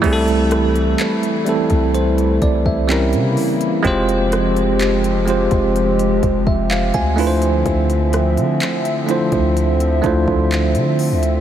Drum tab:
CC |x---------------|----------------|----------------|
HH |xxxxxxxxxxx-xxox|xxxxxxxxxxx-xxox|xxxxxxxxxxx-xxox|
CP |----x-------x---|----x-------x---|----x-------x---|
SD |--r-------------|--r-------------|--r-------------|
BD |o------o--oo----|o------o--oo-o--|o------o--oo----|